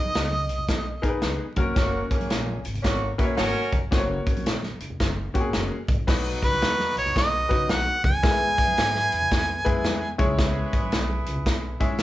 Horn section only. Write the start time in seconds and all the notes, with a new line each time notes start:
1.74 A#3 C#4 F#4
2.10 A#3 C#4 G#4
2.83 A#3 C#4 F#4
3.18 C#4 E4 G#4
3.36 C#4 F#4 A#4
6.08 B3 D#4 F#4
8.24 B3 E4 G#4
10.19 E4 G#4 B4